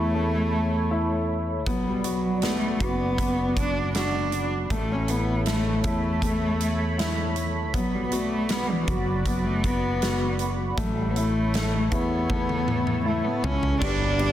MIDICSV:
0, 0, Header, 1, 8, 480
1, 0, Start_track
1, 0, Tempo, 759494
1, 1052, Time_signature, 4, 2, 24, 8
1, 9050, End_track
2, 0, Start_track
2, 0, Title_t, "Analog synth pad"
2, 0, Program_c, 0, 89
2, 0, Note_on_c, 0, 69, 67
2, 0, Note_on_c, 0, 73, 61
2, 0, Note_on_c, 0, 83, 68
2, 1031, Note_off_c, 0, 69, 0
2, 1031, Note_off_c, 0, 73, 0
2, 1053, Note_on_c, 0, 74, 58
2, 1055, Note_on_c, 0, 66, 64
2, 2946, Note_off_c, 0, 83, 0
2, 2953, Note_off_c, 0, 74, 0
2, 2954, Note_off_c, 0, 66, 0
2, 2978, Note_on_c, 0, 73, 59
2, 2980, Note_on_c, 0, 69, 62
2, 2981, Note_on_c, 0, 83, 70
2, 4876, Note_off_c, 0, 73, 0
2, 4877, Note_off_c, 0, 69, 0
2, 4892, Note_on_c, 0, 74, 60
2, 4898, Note_on_c, 0, 66, 61
2, 6792, Note_off_c, 0, 74, 0
2, 6796, Note_off_c, 0, 66, 0
2, 6815, Note_on_c, 0, 69, 68
2, 6816, Note_on_c, 0, 73, 56
2, 8711, Note_off_c, 0, 83, 0
2, 8714, Note_off_c, 0, 69, 0
2, 8715, Note_off_c, 0, 73, 0
2, 8729, Note_on_c, 0, 83, 80
2, 8730, Note_on_c, 0, 55, 65
2, 8734, Note_on_c, 0, 78, 64
2, 9050, Note_off_c, 0, 55, 0
2, 9050, Note_off_c, 0, 78, 0
2, 9050, Note_off_c, 0, 83, 0
2, 9050, End_track
3, 0, Start_track
3, 0, Title_t, "Clean electric guitar"
3, 0, Program_c, 1, 27
3, 8725, Note_on_c, 1, 55, 79
3, 8729, Note_on_c, 1, 59, 82
3, 8732, Note_on_c, 1, 62, 90
3, 8737, Note_on_c, 1, 66, 90
3, 9050, Note_off_c, 1, 55, 0
3, 9050, Note_off_c, 1, 59, 0
3, 9050, Note_off_c, 1, 62, 0
3, 9050, Note_off_c, 1, 66, 0
3, 9050, End_track
4, 0, Start_track
4, 0, Title_t, "Grand piano"
4, 0, Program_c, 2, 0
4, 0, Control_c, 2, 64, 127
4, 0, Note_on_c, 2, 57, 49
4, 0, Note_on_c, 2, 64, 49
4, 82, Note_off_c, 2, 57, 0
4, 92, Note_on_c, 2, 57, 49
4, 566, Note_off_c, 2, 64, 0
4, 576, Note_on_c, 2, 64, 46
4, 1026, Note_off_c, 2, 57, 0
4, 1039, Note_off_c, 2, 64, 0
4, 1056, Note_on_c, 2, 59, 63
4, 1061, Control_c, 2, 64, 0
4, 1176, Control_c, 2, 64, 127
4, 1291, Note_on_c, 2, 66, 43
4, 1525, Note_off_c, 2, 59, 0
4, 1535, Note_on_c, 2, 59, 47
4, 1768, Note_off_c, 2, 66, 0
4, 1778, Note_on_c, 2, 66, 47
4, 2008, Note_off_c, 2, 59, 0
4, 2018, Note_on_c, 2, 59, 52
4, 2490, Note_off_c, 2, 66, 0
4, 2500, Note_on_c, 2, 66, 47
4, 2949, Note_off_c, 2, 59, 0
4, 2961, Note_off_c, 2, 66, 0
4, 2979, Note_on_c, 2, 57, 62
4, 2980, Control_c, 2, 64, 0
4, 3102, Control_c, 2, 64, 127
4, 3212, Note_on_c, 2, 64, 43
4, 3447, Note_off_c, 2, 57, 0
4, 3456, Note_on_c, 2, 57, 49
4, 3686, Note_off_c, 2, 64, 0
4, 3695, Note_on_c, 2, 64, 53
4, 3925, Note_off_c, 2, 57, 0
4, 3935, Note_on_c, 2, 57, 53
4, 4403, Note_off_c, 2, 64, 0
4, 4413, Note_on_c, 2, 64, 48
4, 4868, Note_off_c, 2, 57, 0
4, 4878, Note_off_c, 2, 64, 0
4, 4895, Note_on_c, 2, 59, 62
4, 4899, Control_c, 2, 64, 0
4, 5009, Control_c, 2, 64, 127
4, 5135, Note_on_c, 2, 66, 44
4, 5367, Note_off_c, 2, 59, 0
4, 5377, Note_on_c, 2, 59, 47
4, 5610, Note_off_c, 2, 66, 0
4, 5619, Note_on_c, 2, 66, 49
4, 5850, Note_off_c, 2, 59, 0
4, 5859, Note_on_c, 2, 59, 52
4, 6327, Note_off_c, 2, 66, 0
4, 6337, Note_on_c, 2, 66, 47
4, 6790, Note_off_c, 2, 59, 0
4, 6800, Note_off_c, 2, 66, 0
4, 6810, Note_on_c, 2, 57, 64
4, 6821, Control_c, 2, 64, 0
4, 6947, Control_c, 2, 64, 127
4, 7056, Note_on_c, 2, 64, 46
4, 7294, Note_off_c, 2, 57, 0
4, 7304, Note_on_c, 2, 57, 48
4, 7524, Note_off_c, 2, 64, 0
4, 7534, Note_on_c, 2, 64, 50
4, 7763, Note_off_c, 2, 57, 0
4, 7772, Note_on_c, 2, 57, 53
4, 8243, Note_off_c, 2, 64, 0
4, 8252, Note_on_c, 2, 64, 50
4, 8706, Note_off_c, 2, 57, 0
4, 8717, Note_off_c, 2, 64, 0
4, 8729, Note_on_c, 2, 55, 66
4, 8741, Control_c, 2, 64, 0
4, 8864, Control_c, 2, 64, 127
4, 8961, Note_off_c, 2, 55, 0
4, 8971, Note_on_c, 2, 55, 52
4, 9050, Note_off_c, 2, 55, 0
4, 9050, End_track
5, 0, Start_track
5, 0, Title_t, "Cello"
5, 0, Program_c, 3, 42
5, 0, Note_on_c, 3, 57, 80
5, 796, Note_off_c, 3, 57, 0
5, 1063, Note_on_c, 3, 54, 76
5, 1189, Note_on_c, 3, 55, 66
5, 1198, Note_off_c, 3, 54, 0
5, 1305, Note_on_c, 3, 54, 69
5, 1315, Note_off_c, 3, 55, 0
5, 1543, Note_on_c, 3, 57, 79
5, 1552, Note_off_c, 3, 54, 0
5, 1788, Note_on_c, 3, 59, 87
5, 1797, Note_off_c, 3, 57, 0
5, 2260, Note_off_c, 3, 59, 0
5, 2266, Note_on_c, 3, 62, 84
5, 2483, Note_off_c, 3, 62, 0
5, 2507, Note_on_c, 3, 62, 88
5, 2835, Note_off_c, 3, 62, 0
5, 2990, Note_on_c, 3, 57, 88
5, 3109, Note_on_c, 3, 61, 76
5, 3119, Note_off_c, 3, 57, 0
5, 3221, Note_on_c, 3, 59, 79
5, 3230, Note_off_c, 3, 61, 0
5, 3456, Note_off_c, 3, 59, 0
5, 3467, Note_on_c, 3, 57, 77
5, 3683, Note_off_c, 3, 57, 0
5, 3705, Note_on_c, 3, 57, 81
5, 4633, Note_off_c, 3, 57, 0
5, 4906, Note_on_c, 3, 54, 83
5, 5022, Note_on_c, 3, 55, 73
5, 5031, Note_off_c, 3, 54, 0
5, 5092, Note_off_c, 3, 55, 0
5, 5099, Note_on_c, 3, 59, 60
5, 5145, Note_on_c, 3, 57, 81
5, 5154, Note_off_c, 3, 59, 0
5, 5386, Note_on_c, 3, 59, 87
5, 5395, Note_off_c, 3, 57, 0
5, 5502, Note_on_c, 3, 52, 76
5, 5511, Note_off_c, 3, 59, 0
5, 5623, Note_on_c, 3, 54, 80
5, 5633, Note_off_c, 3, 52, 0
5, 5856, Note_off_c, 3, 54, 0
5, 5860, Note_on_c, 3, 54, 78
5, 5982, Note_on_c, 3, 57, 82
5, 5991, Note_off_c, 3, 54, 0
5, 6101, Note_on_c, 3, 59, 88
5, 6110, Note_off_c, 3, 57, 0
5, 6576, Note_off_c, 3, 59, 0
5, 6821, Note_on_c, 3, 54, 77
5, 6928, Note_off_c, 3, 54, 0
5, 6941, Note_on_c, 3, 55, 71
5, 7016, Note_on_c, 3, 59, 58
5, 7025, Note_off_c, 3, 55, 0
5, 7060, Note_on_c, 3, 57, 85
5, 7070, Note_off_c, 3, 59, 0
5, 7534, Note_off_c, 3, 57, 0
5, 7538, Note_on_c, 3, 59, 90
5, 8229, Note_off_c, 3, 59, 0
5, 8252, Note_on_c, 3, 57, 74
5, 8370, Note_on_c, 3, 59, 73
5, 8380, Note_off_c, 3, 57, 0
5, 8490, Note_on_c, 3, 61, 86
5, 8500, Note_off_c, 3, 59, 0
5, 8728, Note_off_c, 3, 61, 0
5, 8731, Note_on_c, 3, 62, 117
5, 9050, Note_off_c, 3, 62, 0
5, 9050, End_track
6, 0, Start_track
6, 0, Title_t, "Fretless electric bass"
6, 0, Program_c, 4, 35
6, 0, Note_on_c, 4, 40, 77
6, 1053, Note_off_c, 4, 40, 0
6, 1053, Note_on_c, 4, 35, 78
6, 1747, Note_off_c, 4, 35, 0
6, 1771, Note_on_c, 4, 30, 68
6, 2946, Note_off_c, 4, 30, 0
6, 2973, Note_on_c, 4, 33, 92
6, 3667, Note_off_c, 4, 33, 0
6, 3693, Note_on_c, 4, 40, 73
6, 4892, Note_off_c, 4, 40, 0
6, 4892, Note_on_c, 4, 35, 81
6, 5587, Note_off_c, 4, 35, 0
6, 5612, Note_on_c, 4, 30, 72
6, 6786, Note_off_c, 4, 30, 0
6, 6810, Note_on_c, 4, 33, 92
6, 7505, Note_off_c, 4, 33, 0
6, 7534, Note_on_c, 4, 40, 69
6, 8347, Note_off_c, 4, 40, 0
6, 8494, Note_on_c, 4, 37, 69
6, 8716, Note_off_c, 4, 37, 0
6, 8733, Note_on_c, 4, 31, 105
6, 9050, Note_off_c, 4, 31, 0
6, 9050, End_track
7, 0, Start_track
7, 0, Title_t, "Downlifter"
7, 0, Program_c, 5, 103
7, 8732, Note_on_c, 5, 60, 77
7, 9050, Note_off_c, 5, 60, 0
7, 9050, End_track
8, 0, Start_track
8, 0, Title_t, "Drums"
8, 1052, Note_on_c, 9, 36, 89
8, 1052, Note_on_c, 9, 42, 67
8, 1115, Note_off_c, 9, 36, 0
8, 1115, Note_off_c, 9, 42, 0
8, 1290, Note_on_c, 9, 42, 61
8, 1353, Note_off_c, 9, 42, 0
8, 1529, Note_on_c, 9, 42, 69
8, 1538, Note_on_c, 9, 38, 93
8, 1592, Note_off_c, 9, 42, 0
8, 1601, Note_off_c, 9, 38, 0
8, 1771, Note_on_c, 9, 42, 54
8, 1772, Note_on_c, 9, 36, 75
8, 1834, Note_off_c, 9, 42, 0
8, 1836, Note_off_c, 9, 36, 0
8, 2012, Note_on_c, 9, 36, 74
8, 2013, Note_on_c, 9, 42, 80
8, 2075, Note_off_c, 9, 36, 0
8, 2076, Note_off_c, 9, 42, 0
8, 2253, Note_on_c, 9, 42, 60
8, 2254, Note_on_c, 9, 36, 78
8, 2316, Note_off_c, 9, 42, 0
8, 2317, Note_off_c, 9, 36, 0
8, 2494, Note_on_c, 9, 42, 75
8, 2499, Note_on_c, 9, 38, 81
8, 2557, Note_off_c, 9, 42, 0
8, 2563, Note_off_c, 9, 38, 0
8, 2731, Note_on_c, 9, 42, 55
8, 2794, Note_off_c, 9, 42, 0
8, 2973, Note_on_c, 9, 36, 92
8, 2973, Note_on_c, 9, 42, 70
8, 3036, Note_off_c, 9, 36, 0
8, 3036, Note_off_c, 9, 42, 0
8, 3210, Note_on_c, 9, 42, 60
8, 3274, Note_off_c, 9, 42, 0
8, 3449, Note_on_c, 9, 42, 71
8, 3458, Note_on_c, 9, 38, 90
8, 3512, Note_off_c, 9, 42, 0
8, 3521, Note_off_c, 9, 38, 0
8, 3689, Note_on_c, 9, 42, 60
8, 3692, Note_on_c, 9, 36, 78
8, 3752, Note_off_c, 9, 42, 0
8, 3756, Note_off_c, 9, 36, 0
8, 3931, Note_on_c, 9, 36, 76
8, 3934, Note_on_c, 9, 42, 75
8, 3994, Note_off_c, 9, 36, 0
8, 3998, Note_off_c, 9, 42, 0
8, 4174, Note_on_c, 9, 42, 59
8, 4237, Note_off_c, 9, 42, 0
8, 4418, Note_on_c, 9, 42, 71
8, 4424, Note_on_c, 9, 38, 81
8, 4481, Note_off_c, 9, 42, 0
8, 4487, Note_off_c, 9, 38, 0
8, 4651, Note_on_c, 9, 42, 54
8, 4714, Note_off_c, 9, 42, 0
8, 4891, Note_on_c, 9, 36, 94
8, 4892, Note_on_c, 9, 42, 68
8, 4954, Note_off_c, 9, 36, 0
8, 4955, Note_off_c, 9, 42, 0
8, 5129, Note_on_c, 9, 42, 61
8, 5192, Note_off_c, 9, 42, 0
8, 5365, Note_on_c, 9, 42, 73
8, 5374, Note_on_c, 9, 38, 90
8, 5428, Note_off_c, 9, 42, 0
8, 5438, Note_off_c, 9, 38, 0
8, 5609, Note_on_c, 9, 42, 55
8, 5611, Note_on_c, 9, 36, 77
8, 5672, Note_off_c, 9, 42, 0
8, 5674, Note_off_c, 9, 36, 0
8, 5849, Note_on_c, 9, 36, 79
8, 5849, Note_on_c, 9, 42, 82
8, 5912, Note_off_c, 9, 42, 0
8, 5913, Note_off_c, 9, 36, 0
8, 6091, Note_on_c, 9, 42, 59
8, 6092, Note_on_c, 9, 36, 77
8, 6154, Note_off_c, 9, 42, 0
8, 6155, Note_off_c, 9, 36, 0
8, 6332, Note_on_c, 9, 42, 72
8, 6338, Note_on_c, 9, 38, 86
8, 6395, Note_off_c, 9, 42, 0
8, 6401, Note_off_c, 9, 38, 0
8, 6566, Note_on_c, 9, 42, 52
8, 6629, Note_off_c, 9, 42, 0
8, 6810, Note_on_c, 9, 36, 99
8, 6810, Note_on_c, 9, 42, 75
8, 6873, Note_off_c, 9, 42, 0
8, 6874, Note_off_c, 9, 36, 0
8, 7053, Note_on_c, 9, 42, 60
8, 7116, Note_off_c, 9, 42, 0
8, 7292, Note_on_c, 9, 42, 68
8, 7301, Note_on_c, 9, 38, 92
8, 7355, Note_off_c, 9, 42, 0
8, 7365, Note_off_c, 9, 38, 0
8, 7530, Note_on_c, 9, 42, 54
8, 7532, Note_on_c, 9, 36, 74
8, 7593, Note_off_c, 9, 42, 0
8, 7595, Note_off_c, 9, 36, 0
8, 7772, Note_on_c, 9, 36, 77
8, 7774, Note_on_c, 9, 48, 43
8, 7835, Note_off_c, 9, 36, 0
8, 7838, Note_off_c, 9, 48, 0
8, 7895, Note_on_c, 9, 48, 41
8, 7959, Note_off_c, 9, 48, 0
8, 8013, Note_on_c, 9, 47, 56
8, 8076, Note_off_c, 9, 47, 0
8, 8133, Note_on_c, 9, 47, 52
8, 8196, Note_off_c, 9, 47, 0
8, 8494, Note_on_c, 9, 43, 85
8, 8557, Note_off_c, 9, 43, 0
8, 8613, Note_on_c, 9, 43, 67
8, 8676, Note_off_c, 9, 43, 0
8, 8732, Note_on_c, 9, 36, 109
8, 8733, Note_on_c, 9, 49, 88
8, 8795, Note_off_c, 9, 36, 0
8, 8797, Note_off_c, 9, 49, 0
8, 8970, Note_on_c, 9, 51, 59
8, 9033, Note_off_c, 9, 51, 0
8, 9050, End_track
0, 0, End_of_file